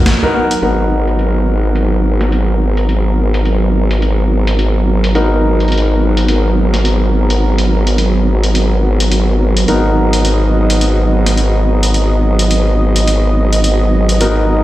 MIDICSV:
0, 0, Header, 1, 5, 480
1, 0, Start_track
1, 0, Key_signature, 5, "minor"
1, 0, Tempo, 566038
1, 529, Time_signature, 4, 2, 24, 8
1, 12411, End_track
2, 0, Start_track
2, 0, Title_t, "Grand piano"
2, 0, Program_c, 0, 0
2, 193, Note_on_c, 0, 59, 86
2, 193, Note_on_c, 0, 66, 80
2, 193, Note_on_c, 0, 70, 99
2, 194, Note_on_c, 0, 63, 78
2, 275, Note_off_c, 0, 59, 0
2, 275, Note_off_c, 0, 63, 0
2, 275, Note_off_c, 0, 66, 0
2, 275, Note_off_c, 0, 70, 0
2, 290, Note_on_c, 0, 63, 75
2, 290, Note_on_c, 0, 66, 77
2, 290, Note_on_c, 0, 70, 94
2, 291, Note_on_c, 0, 59, 81
2, 428, Note_off_c, 0, 63, 0
2, 428, Note_off_c, 0, 66, 0
2, 428, Note_off_c, 0, 70, 0
2, 429, Note_off_c, 0, 59, 0
2, 529, Note_on_c, 0, 59, 74
2, 529, Note_on_c, 0, 63, 68
2, 529, Note_on_c, 0, 66, 67
2, 529, Note_on_c, 0, 70, 82
2, 4346, Note_off_c, 0, 59, 0
2, 4346, Note_off_c, 0, 63, 0
2, 4346, Note_off_c, 0, 66, 0
2, 4346, Note_off_c, 0, 70, 0
2, 4367, Note_on_c, 0, 63, 72
2, 4367, Note_on_c, 0, 70, 84
2, 4368, Note_on_c, 0, 66, 70
2, 4369, Note_on_c, 0, 59, 74
2, 8185, Note_off_c, 0, 63, 0
2, 8185, Note_off_c, 0, 66, 0
2, 8185, Note_off_c, 0, 70, 0
2, 8186, Note_off_c, 0, 59, 0
2, 8208, Note_on_c, 0, 66, 67
2, 8209, Note_on_c, 0, 63, 69
2, 8209, Note_on_c, 0, 70, 82
2, 8210, Note_on_c, 0, 59, 74
2, 12025, Note_off_c, 0, 66, 0
2, 12026, Note_off_c, 0, 59, 0
2, 12026, Note_off_c, 0, 63, 0
2, 12026, Note_off_c, 0, 70, 0
2, 12047, Note_on_c, 0, 66, 70
2, 12048, Note_on_c, 0, 70, 84
2, 12049, Note_on_c, 0, 59, 76
2, 12049, Note_on_c, 0, 63, 71
2, 12411, Note_off_c, 0, 59, 0
2, 12411, Note_off_c, 0, 63, 0
2, 12411, Note_off_c, 0, 66, 0
2, 12411, Note_off_c, 0, 70, 0
2, 12411, End_track
3, 0, Start_track
3, 0, Title_t, "Analog synth pad"
3, 0, Program_c, 1, 89
3, 0, Note_on_c, 1, 54, 82
3, 0, Note_on_c, 1, 59, 79
3, 0, Note_on_c, 1, 70, 94
3, 492, Note_off_c, 1, 54, 0
3, 492, Note_off_c, 1, 59, 0
3, 492, Note_off_c, 1, 70, 0
3, 525, Note_on_c, 1, 59, 72
3, 525, Note_on_c, 1, 70, 85
3, 526, Note_on_c, 1, 54, 80
3, 8202, Note_off_c, 1, 70, 0
3, 8208, Note_on_c, 1, 75, 88
3, 12411, Note_off_c, 1, 54, 0
3, 12411, Note_off_c, 1, 59, 0
3, 12411, Note_off_c, 1, 75, 0
3, 12411, End_track
4, 0, Start_track
4, 0, Title_t, "Wobble bass"
4, 0, Program_c, 2, 39
4, 528, Note_on_c, 2, 32, 88
4, 8189, Note_off_c, 2, 32, 0
4, 8207, Note_on_c, 2, 32, 91
4, 12411, Note_off_c, 2, 32, 0
4, 12411, End_track
5, 0, Start_track
5, 0, Title_t, "Drums"
5, 51, Note_on_c, 9, 38, 118
5, 51, Note_on_c, 9, 42, 56
5, 135, Note_off_c, 9, 38, 0
5, 135, Note_off_c, 9, 42, 0
5, 432, Note_on_c, 9, 42, 68
5, 517, Note_off_c, 9, 42, 0
5, 530, Note_on_c, 9, 42, 55
5, 614, Note_off_c, 9, 42, 0
5, 912, Note_on_c, 9, 42, 59
5, 996, Note_off_c, 9, 42, 0
5, 1009, Note_on_c, 9, 42, 53
5, 1093, Note_off_c, 9, 42, 0
5, 1489, Note_on_c, 9, 42, 51
5, 1574, Note_off_c, 9, 42, 0
5, 1872, Note_on_c, 9, 40, 37
5, 1872, Note_on_c, 9, 42, 63
5, 1957, Note_off_c, 9, 40, 0
5, 1957, Note_off_c, 9, 42, 0
5, 1970, Note_on_c, 9, 42, 53
5, 2054, Note_off_c, 9, 42, 0
5, 2351, Note_on_c, 9, 42, 66
5, 2435, Note_off_c, 9, 42, 0
5, 2450, Note_on_c, 9, 42, 52
5, 2535, Note_off_c, 9, 42, 0
5, 2834, Note_on_c, 9, 42, 59
5, 2919, Note_off_c, 9, 42, 0
5, 2929, Note_on_c, 9, 42, 50
5, 3014, Note_off_c, 9, 42, 0
5, 3314, Note_on_c, 9, 42, 61
5, 3398, Note_off_c, 9, 42, 0
5, 3411, Note_on_c, 9, 42, 53
5, 3495, Note_off_c, 9, 42, 0
5, 3794, Note_on_c, 9, 42, 69
5, 3878, Note_off_c, 9, 42, 0
5, 3891, Note_on_c, 9, 42, 53
5, 3976, Note_off_c, 9, 42, 0
5, 4274, Note_on_c, 9, 42, 66
5, 4358, Note_off_c, 9, 42, 0
5, 4368, Note_on_c, 9, 42, 51
5, 4453, Note_off_c, 9, 42, 0
5, 4751, Note_on_c, 9, 42, 27
5, 4816, Note_off_c, 9, 42, 0
5, 4816, Note_on_c, 9, 42, 38
5, 4849, Note_off_c, 9, 42, 0
5, 4849, Note_on_c, 9, 42, 52
5, 4898, Note_off_c, 9, 42, 0
5, 4898, Note_on_c, 9, 42, 52
5, 4982, Note_off_c, 9, 42, 0
5, 5233, Note_on_c, 9, 42, 61
5, 5318, Note_off_c, 9, 42, 0
5, 5330, Note_on_c, 9, 42, 52
5, 5414, Note_off_c, 9, 42, 0
5, 5713, Note_on_c, 9, 40, 35
5, 5713, Note_on_c, 9, 42, 64
5, 5798, Note_off_c, 9, 40, 0
5, 5798, Note_off_c, 9, 42, 0
5, 5808, Note_on_c, 9, 42, 52
5, 5893, Note_off_c, 9, 42, 0
5, 6191, Note_on_c, 9, 42, 62
5, 6276, Note_off_c, 9, 42, 0
5, 6431, Note_on_c, 9, 42, 49
5, 6516, Note_off_c, 9, 42, 0
5, 6672, Note_on_c, 9, 42, 59
5, 6757, Note_off_c, 9, 42, 0
5, 6769, Note_on_c, 9, 42, 48
5, 6854, Note_off_c, 9, 42, 0
5, 7153, Note_on_c, 9, 42, 58
5, 7238, Note_off_c, 9, 42, 0
5, 7250, Note_on_c, 9, 42, 50
5, 7335, Note_off_c, 9, 42, 0
5, 7634, Note_on_c, 9, 42, 60
5, 7719, Note_off_c, 9, 42, 0
5, 7730, Note_on_c, 9, 42, 51
5, 7815, Note_off_c, 9, 42, 0
5, 8112, Note_on_c, 9, 42, 59
5, 8197, Note_off_c, 9, 42, 0
5, 8209, Note_on_c, 9, 42, 47
5, 8294, Note_off_c, 9, 42, 0
5, 8591, Note_on_c, 9, 42, 58
5, 8676, Note_off_c, 9, 42, 0
5, 8690, Note_on_c, 9, 42, 49
5, 8775, Note_off_c, 9, 42, 0
5, 9073, Note_on_c, 9, 42, 55
5, 9158, Note_off_c, 9, 42, 0
5, 9169, Note_on_c, 9, 42, 47
5, 9254, Note_off_c, 9, 42, 0
5, 9552, Note_on_c, 9, 40, 35
5, 9552, Note_on_c, 9, 42, 61
5, 9637, Note_off_c, 9, 40, 0
5, 9637, Note_off_c, 9, 42, 0
5, 9646, Note_on_c, 9, 42, 49
5, 9730, Note_off_c, 9, 42, 0
5, 10031, Note_on_c, 9, 42, 61
5, 10116, Note_off_c, 9, 42, 0
5, 10128, Note_on_c, 9, 42, 48
5, 10213, Note_off_c, 9, 42, 0
5, 10508, Note_on_c, 9, 42, 55
5, 10593, Note_off_c, 9, 42, 0
5, 10606, Note_on_c, 9, 42, 49
5, 10690, Note_off_c, 9, 42, 0
5, 10988, Note_on_c, 9, 42, 56
5, 11073, Note_off_c, 9, 42, 0
5, 11088, Note_on_c, 9, 42, 47
5, 11172, Note_off_c, 9, 42, 0
5, 11470, Note_on_c, 9, 42, 58
5, 11555, Note_off_c, 9, 42, 0
5, 11567, Note_on_c, 9, 42, 48
5, 11652, Note_off_c, 9, 42, 0
5, 11949, Note_on_c, 9, 42, 61
5, 12033, Note_off_c, 9, 42, 0
5, 12047, Note_on_c, 9, 42, 51
5, 12132, Note_off_c, 9, 42, 0
5, 12411, End_track
0, 0, End_of_file